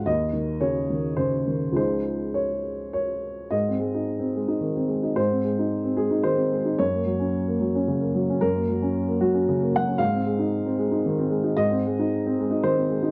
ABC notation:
X:1
M:3/4
L:1/16
Q:1/4=111
K:Abmix
V:1 name="Upright piano"
e4 d4 c4 | c4 d4 d4 | e12 | c6 A2 c4 |
d12 | B6 G2 z2 g2 | f12 | e8 c4 |]
V:2 name="Upright piano" clef=bass
E,,2 E,2 D,2 E,2 D,2 E,2 | [D,,F,A,E]12 | A,, C A, E2 C A, E E, C A, E | A,, C A, E2 C A, E E, C A, E |
G,, B, G, D2 B, G, D D, B, G, D | G,, B, G, D2 B, G, D D, B, G, D | A,, C A, E2 C A, E E, C A, E | A,, C A, E2 C A, E E, C A, E |]